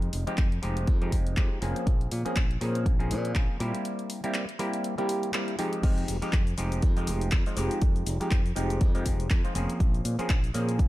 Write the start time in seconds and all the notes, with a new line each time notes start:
Already playing: F3 G#3 C4 D#4 G4
0.02 closed hi-hat
0.13 F1, open hi-hat
0.27 F3 G#3 C4 D#4 G4, closed hi-hat
0.38 F2, kick, clap, closed hi-hat
0.52 closed hi-hat
0.62 F1 F3 G#3 C4 D#4 G4, open hi-hat
0.77 closed hi-hat
0.87 F2, kick, closed hi-hat
1.01 F3 G#3 C4 D#4 G4, closed hi-hat
1.12 F1, kick, open hi-hat
1.27 closed hi-hat
1.37 F2 F3 G#3 C4 D#4 G4, kick, clap, closed hi-hat
1.61 F1 F3 A#3 C4 C#4 G#4, open hi-hat
1.76 closed hi-hat
1.87 A#1, kick, closed hi-hat
2.01 closed hi-hat
2.12 A#2, open hi-hat
2.25 F3 A#3 C4 C#4 G#4, muted fingered electric bass stroke, closed hi-hat
2.36 A#1, kick, clap, closed hi-hat
2.51 closed hi-hat
2.61 A#2 F3 A#3 C4 C#4 G#4, open hi-hat
2.75 closed hi-hat
2.86 A#1, kick, closed hi-hat
2.99 F3 A#3 C4 C#4 G#4, closed hi-hat
3.11 A#2, open hi-hat
3.25 closed hi-hat
3.35 A#1 F3 A#3 C4 C#4 G#4, kick, clap, closed hi-hat
3.59 A#2 G3 A#3 C4 E4 G4, open hi-hat
3.75 closed hi-hat
3.85 closed hi-hat
3.99 closed hi-hat
4.10 open hi-hat
4.24 G3 A#3 C4 E4 G4, closed hi-hat
4.34 clap, closed hi-hat
4.49 closed hi-hat
4.59 G3 A#3 C4 E4 G4, open hi-hat
4.73 closed hi-hat
4.84 closed hi-hat
4.98 G3 A#3 C4 E4 G4, closed hi-hat
5.09 open hi-hat
5.23 closed hi-hat
5.33 G3 A#3 C4 E4 G4, clap, closed hi-hat
5.48 closed hi-hat
5.58 F3 G#3 C4 D#4 G4, open hi-hat
5.73 closed hi-hat
5.83 F2 F3 G#3 C4 D#4 G4, kick, closed hi-hat, crash, cabasa
5.98 closed hi-hat, cabasa
6.08 F1, open hi-hat, cabasa
6.22 F3 G#3 C4 D#4 G4, muted fingered electric bass stroke, closed hi-hat, cabasa
6.33 F2, kick, clap, closed hi-hat, cabasa
6.47 closed hi-hat, cabasa
6.58 F1 F3 G#3 C4 D#4 G4, open hi-hat, cabasa
6.72 closed hi-hat, cabasa
6.82 F2, kick, closed hi-hat, cabasa
6.97 F3 G#3 C4 D#4 G4, closed hi-hat, cabasa
7.07 F1, open hi-hat, cabasa
7.21 closed hi-hat, cabasa
7.32 F2, kick, clap, closed hi-hat, cabasa
7.46 F3 G#3 C4 D#4 F4, closed hi-hat, cabasa
7.56 F1 F3 G#3 C4 D#4 G4, open hi-hat, cabasa
7.71 closed hi-hat, cabasa
7.82 F2, kick, closed hi-hat, cabasa
7.96 closed hi-hat, cabasa
8.07 F1, open hi-hat, cabasa
8.20 F3 G#3 C4 D#4 G4, closed hi-hat, cabasa
8.31 F2, kick, clap, closed hi-hat, cabasa
8.46 closed hi-hat, cabasa
8.56 F1 F3 G#3 C4 D#4 G4, open hi-hat, cabasa
8.70 closed hi-hat, cabasa
8.81 F2, kick, closed hi-hat, cabasa
8.95 F3 G#3 C4 D#4 G4, closed hi-hat, cabasa
9.06 F1, kick, open hi-hat, cabasa
9.20 closed hi-hat, cabasa
9.30 F2, kick, clap, closed hi-hat, cabasa
9.44 F3 G#3 C4 D#4 F4, closed hi-hat, cabasa
9.55 F1 F3 A#3 C4 C#4 G#4, open hi-hat, cabasa
9.70 closed hi-hat, cabasa
9.80 A#1, kick, closed hi-hat, cabasa
9.94 closed hi-hat, cabasa
10.05 A#2, open hi-hat, cabasa
10.19 F3 A#3 C4 C#4 G#4, muted fingered electric bass stroke, closed hi-hat, cabasa
10.30 A#1, kick, clap, closed hi-hat, cabasa
10.44 closed hi-hat, cabasa
10.54 A#2 F3 A#3 C4 C#4 G#4, open hi-hat, cabasa
10.69 closed hi-hat, cabasa
10.79 A#1, kick, closed hi-hat, cabasa